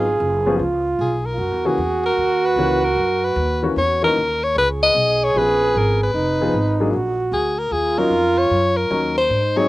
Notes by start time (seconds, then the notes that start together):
Already playing: G#1 F4 G#4
0.20 F#1
0.46 F3 B3 C#4 G#4
0.59 C#2 F4
0.99 B1 G#4
1.26 A#4
1.34 F4
1.38 F#2 F#4
1.51 E2
1.65 C#2 E3 A#3 C#4 F#4 G#4
1.78 E2
2.06 A#4
2.17 D#2
2.45 B4
2.56 C#2 E3 A#3 C#4 F#4
2.84 A#4
2.96 F#2
3.24 B4
3.36 D#2
3.63 E3 A#3 C#4 F#4
3.76 E2 C#5
4.02 E3 A#3 C#4 D#4 A#4
4.16 D#2
4.44 C#5
4.55 C#2 G#4 B4
4.83 D#5
4.95 B1
5.24 C#5
5.34 A#1 F3 B3 C#4 G#4 B4
5.75 G#1 A#4
6.03 B4
6.14 F1 D#4
6.41 F3 B3 D#4 G#4
6.53 G#1
6.80 F#3 A#3 D4 G#4
6.93 A#1 F#4
7.32 D2 G#4
7.59 A#4
7.71 D#2 F4 G#4
7.98 F#3 C#4 D#4 A#4
8.10 F2
8.38 C#5
8.50 F#2
8.77 A#4
8.91 D#2 F#3 C#4 D#4 A#4
9.18 C5
9.30 G#2 D#4
9.56 F#3 C4 D#4 G#4 C#5